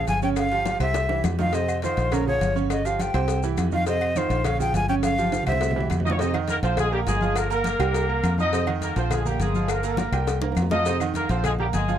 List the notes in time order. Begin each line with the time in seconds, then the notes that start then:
Already playing: F3 F4 G#4
0.07 G1 G#5, cowbell, high conga, low agogo, maracas
0.22 C#3 C#4 C#5 G5, high conga, maracas
0.36 F5, cowbell, low agogo, claves, maracas
0.51 F3 F4 G4, high conga, low agogo
0.66 cowbell, high bongo, high conga, low agogo, maracas
0.80 C2 C3 C4 C5 E5, cowbell, low agogo, claves, maracas
0.94 cowbell, high bongo, high conga, low agogo, maracas
1.09 E3 E4 G4, low bongo, high conga, high timbale
1.24 F2, cowbell, low bongo, high conga, low timbale, low agogo, claves, maracas
1.38 D#3 D#4 F4 F5, low bongo, high conga, low timbale, maracas
1.53 C3 C4 C5 D#5, cowbell, low agogo, maracas
1.68 high conga, low agogo, claves, maracas
1.82 D#3 D#4 F4 C5, cowbell, high conga, maracas
1.97 A#1, cowbell, high conga, low agogo, maracas
2.12 C#3 C#4 A#4 C#5, cowbell, high conga, low conga, low agogo, claves, maracas
2.27 F3 F4 G#4 C#5, high conga, low conga
2.41 G1, cowbell, high conga, low agogo, maracas
2.55 C#3 C#4 C#5, high conga, maracas
2.70 D#5, cowbell, high conga, low agogo, claves, maracas
2.85 F3 F4 G4 F5, high conga, low agogo, maracas
2.99 G5, cowbell, high conga, low agogo, maracas
3.14 C2 C3 C4 C5, cowbell, low agogo, claves, maracas
3.28 cowbell, high conga, low agogo, maracas
3.43 E3 E4 G4, high conga, maracas
3.57 F2, cowbell, high conga, low agogo, claves, maracas
3.72 D#3 D#4 F4 F5, high conga, maracas
3.86 C3 C4 C5 D#5, cowbell, low agogo, maracas
4.01 high conga, low agogo, claves
4.16 D#3 D#4 F4 C5, cowbell, high conga, maracas
4.30 A#1, cowbell, high conga, low agogo, maracas
4.44 C#3 C#4 C#5 F5, cowbell, high conga, low conga, low agogo, claves, maracas
4.60 F3 F4 G#4 G5, high conga, low conga, maracas
4.74 G1 G#5, cowbell, high conga, low timbale, low agogo, maracas
4.88 C#3 C#4 C#5 G5, high conga, maracas
5.03 F5, cowbell, high conga, low agogo, claves, maracas
5.18 F3 F4 G4, low agogo, maracas
5.23 high conga
5.32 cowbell, low conga, high timbale, low agogo, maracas
5.43 cowbell, low conga, low agogo, claves
5.47 C2 C3 C4 C5 E5, maracas
5.51 low conga, high timbale
5.61 cowbell, low timbale, low agogo, maracas
5.71 low conga, low timbale
5.76 E3 E4 G4
5.80 low conga, low timbale
5.90 F2, cowbell, low conga, low agogo, claves, maracas
6.00 low conga, low timbale
6.05 D#3 D#4 F4 D#5, maracas
6.10 C#5, low conga, low timbale
6.19 C3 C4 D#4 C5 D#5, cowbell, high conga, low agogo, maracas
6.34 D#3 D#4 D#5, high conga, low agogo, claves
6.48 A#3 A#4, cowbell, high conga, maracas
6.63 A#1 F3 C4 F4 C5 F5, cowbell, high conga, low agogo, maracas
6.77 G#3 G#4, cowbell, high conga, low conga, low agogo, claves, maracas
6.92 G3 A#3 G4 A#4 A#5, high conga
7.06 G1 G#3 G#4, cowbell, high conga, low timbale, low agogo, maracas
7.21 F3 F4 F5, high conga, maracas
7.35 A#3 A#4, cowbell, high conga, low agogo, claves, maracas
7.50 A#3 A#4 A#5, high conga, low agogo, maracas
7.64 cowbell, high conga, low agogo, maracas
7.79 C2 G3 G4 G5, cowbell, low agogo, claves, maracas
7.94 cowbell, high conga, low agogo, maracas
8.09 A#3 A#4 A#5, high conga
8.23 F2, cowbell, high conga, low agogo, claves, maracas
8.38 F3 D#4 F4 D#5 F5, high conga, maracas
8.53 C3 C4 C5, cowbell, high conga, low agogo, maracas
8.67 D#3 D#4 D#5, high conga, low agogo, claves
8.81 A#3 A#4, cowbell, high conga, maracas
8.96 A#1 F3 C4 F4 C5 F5, cowbell, low agogo, maracas
9.10 G#3 G#4, cowbell, high conga, low conga, low agogo, claves, maracas
9.26 G3 A#3 G4 A#4 A#5, high conga, low conga, maracas
9.39 G1 G#3 G#4, cowbell, high conga, low agogo, maracas
9.54 F3 F4 F5, high conga, maracas
9.68 A#3 A#4, cowbell, high conga, low agogo, claves, maracas
9.83 A#3 A#4 A#5, high conga, low agogo, maracas
9.97 cowbell, high bongo, high conga, low agogo, maracas
10.12 C2 G3 G4 G5, cowbell, low agogo, claves, maracas
10.26 cowbell, low bongo, high conga, low agogo, maracas
10.41 A#3 A#4 A#5, low bongo, high conga, high timbale
10.52 high conga, high timbale
10.56 F2, cowbell, low agogo, claves, maracas
10.62 low timbale
10.70 F3 D#4 F4 D#5 F5, low bongo, high conga, low timbale, maracas
10.85 C3 C4 C5, cowbell, high conga, low agogo, maracas
10.99 D#3 D#4 D#5, high conga, low agogo, claves, maracas
11.14 A#3 A#4, cowbell, high conga, maracas
11.29 A#1 F3 C4 F4 C5 F5, cowbell, high conga, low agogo, maracas
11.44 G#3 G#4, cowbell, high conga, low conga, low agogo, claves, maracas
11.59 G3 A#3 G4 A#4 A#5, high conga, low conga
11.73 G1 G#3 G#4, cowbell, high conga, low agogo, maracas
11.88 F3 F4 F5, high conga, maracas